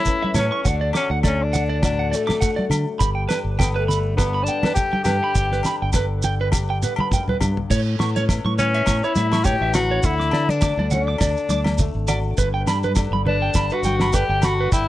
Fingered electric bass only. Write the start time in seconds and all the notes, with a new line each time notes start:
0.34 A2
0.65 D2
1.10 D2
2.70 D3
3.00 G1
3.44 G1
5.05 G2
5.35 G1
5.82 G1
7.41 G2
7.70 A2
7.99 A2
8.45 A2
8.87 A2
9.17 A2
9.61 A1
10.03 D2
10.32 D3
10.77 D2
11.20 D2
11.49 D2
11.95 G#1
12.38 G1
12.66 G2
13.11 G1
13.55 G1
13.83 G1
14.29 G1
14.72 G1